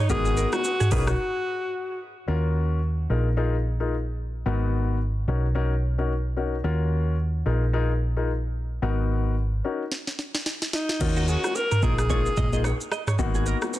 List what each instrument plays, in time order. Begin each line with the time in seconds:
0.09 fingered electric bass G#1, grand piano B3 D#4 F#4 A#4, alto saxophone G#4, kick, low conga, shaker
0.25 clean electric guitar G#4, low bongo, shaker
0.37 clean electric guitar A#4, high bongo, shaker
0.53 alto saxophone F#4, cross-stick, low bongo, shaker
0.64 high bongo, shaker
0.80 clean electric guitar G#4, mid tom, shaker
0.91 fingered electric bass B1, grand piano C#4 D#4 F#4 A#4, alto saxophone G#4, clean electric guitar B4, kick, open hi-hat, low bongo, shaker
1.07 alto saxophone F#4, cross-stick, shaker
2.28 fingered electric bass D#2, grand piano C#4 F4 F#4 A#4
3.10 fingered electric bass A#1, grand piano D#4 F4 G#4 A#4
3.37 grand piano D#4 F4 G#4 A#4
3.80 grand piano D#4 F4 G#4 A#4
4.46 fingered electric bass G#1, grand piano B3 D#4 F#4 A#4
5.28 fingered electric bass B1, grand piano C#4 D#4 F#4 A#4
5.55 grand piano C#4 D#4 F#4 A#4
5.98 grand piano C#4 D#4 F#4 A#4
6.37 grand piano C#4 D#4 F#4 A#4
6.64 fingered electric bass D#2, grand piano C#4 F4 F#4 A#4
7.46 fingered electric bass A#1, grand piano D#4 F4 G#4 A#4
7.73 grand piano D#4 F4 G#4 A#4
8.17 grand piano D#4 F4 G#4 A#4
8.82 fingered electric bass G#1, grand piano B3 D#4 F#4 A#4
9.64 grand piano C#4 D#4 F#4 A#4
9.92 snare
10.07 snare
10.19 snare
10.35 snare
10.46 snare
10.62 snare
10.73 alto saxophone D#4, snare
10.89 snare
11.01 fingered electric bass D#2, grand piano C#4 F4 F#4 A#4, kick, crash, low conga, shaker
11.16 clean electric guitar F#4, low bongo, shaker
11.28 alto saxophone F#4, clean electric guitar G#4, shaker
11.44 cross-stick, low bongo, shaker
11.55 alto saxophone A#4, high bongo, shaker
11.71 clean electric guitar A#4, mid tom, shaker
11.82 fingered electric bass A#1, grand piano A#3 D#4 F4 G#4, alto saxophone G#4, clean electric guitar A#4, kick, low bongo, shaker
11.98 alto saxophone G#4, cross-stick, shaker
12.10 grand piano A#3 D#4 F4 G#4, clean electric guitar C#5, kick, low conga, shaker
12.26 high bongo, shaker
12.37 fingered electric bass A#1, clean electric guitar D#5, kick, mid tom, low bongo, low conga, shaker
12.52 grand piano A#3 D#4 F4 G#4, clean electric guitar D#5, shaker
12.64 clean electric guitar C#5, cross-stick, high bongo, shaker
12.81 shaker
12.92 clean electric guitar D#5, cross-stick, shaker
13.07 clean electric guitar C#5, cross-stick, mid tom, shaker
13.19 fingered electric bass G#1, grand piano A#3 B3 D#4 F#4, kick, low conga, shaker
13.34 clean electric guitar G#4, low bongo, shaker
13.46 clean electric guitar A#4, shaker
13.62 cross-stick, low bongo, shaker
13.73 high bongo, shaker